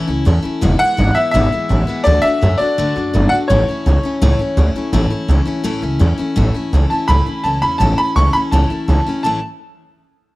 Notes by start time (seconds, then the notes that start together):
0.08 C#2 A3 C#4 E4
0.25 E2 E3 A3 C#4 E4
0.43 A3 C#4 E4, muted upright bass stroke
0.61 E1 E2 B2 E3 G#3 B3 E4
0.79 E3 G#3 B3 E4 F#5, muted upright bass stroke
0.97 G#1 E3 G#3 B3 E4
1.15 E3 G#3 B3 E4 E5
1.31 G#1 E2 B2 E3 G#3 B3 E5
1.36 E4
1.52 E3 G#3 B3 E4, muted upright bass stroke
1.69 A1 E3 G#3 B3 E4
1.87 E3 G#3 B3 E4
2.04 D2 D3 A3 D4 F#4 D5
2.22 A3 D4 F#4 E5
2.42 F#2 D3 A3 D4 F#4
2.58 A3 D4 F#4 D5, muted upright bass stroke
2.78 D2 D3 A3 D4 F#4
2.96 F#2 A3 D4 F#4
3.14 G1 D3 A3 D4 F#4
3.29 D4 F#4 F#5
3.33 A3
3.48 A1 A2 E3 A3 C#4 E4 C#5
3.68 A3 C#4 E4, muted upright bass stroke
3.86 C#2 E3 A3 C#4 E4
4.03 A3 C#4 E4, muted upright bass stroke
4.22 C#2 A2 E3 A3 C#4 E4
4.39 A3 C#4 E4, muted upright bass stroke
4.57 D2 E3 A3 C#4 E4
4.75 A3 C#4 E4, muted upright bass stroke
4.93 A1 A2 E3 A3 C#4 E4
5.10 A3 C#4 E4, muted upright bass stroke
5.28 C#2 E3 A3 C#4 E4
5.45 A3 C#4 E4, muted upright bass stroke
5.64 A1 A2 E3 A3 C#4 E4
5.82 C#2 A3 C#4 E4
5.99 E2 E3 A3 C#4 E4
6.18 A3 C#4 E4, muted upright bass stroke
6.36 A1 A2 E3 A3 C#4 E4
6.54 A3 C#4 E4, muted upright bass stroke
6.73 C#2 E3 A3 C#4 E4
6.90 A3 C#4 E4 A5, muted upright bass stroke
7.08 C#2 A2 E3 A3 C#4 E4 B5
7.26 A3 C#4 E4, muted upright bass stroke
7.43 C#2 E3 A3 C#4 E4 A5
7.62 E2 A3 C#4 E4 B5
7.78 A1 A2 E3 A3 C#4 E4 A5
7.98 A3 C#4 E4 B5
8.16 C#2 E3 A3 C#4 E4 C#6
8.33 A3 C#4 E4 B5, muted upright bass stroke
8.51 C#2 A2 E3 A3 C#4 E4 A5
8.70 A3 C#4 E4, muted upright bass stroke
8.88 C#2 E3 A3 C#4 E4
9.06 A3 C#4 E4, muted upright bass stroke
9.23 A1 A2 E3 A3 C#4 E4 A5